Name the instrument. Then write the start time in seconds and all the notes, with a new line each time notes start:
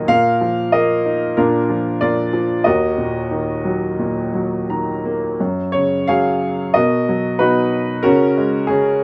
upright piano
0.08 A#2 A#4 F5
0.41 F3
0.72 A#3 A#4 D#5
1.06 D#4
1.37 A#2 D4 F4 A#4
1.70 F3
2.01 A#2 F4 A#4 D5
2.33 F3
2.64 D#2 F#4 A#4 D#5
2.98 A#2
3.31 D#3
3.65 F#3
3.99 A#2
4.34 F#3
4.70 D#3 A#5
5.05 A#3
5.40 F#2
5.72 C#3 C#5
6.07 F#3 G#4 C#5 F5
6.74 B2 F#4 A#4 D#5
7.09 F#3
7.39 B2 D#4 F#4 B4
8.03 C#3 C#4 F#4 A#4
8.38 G#3
8.67 C#3 C#4 G#4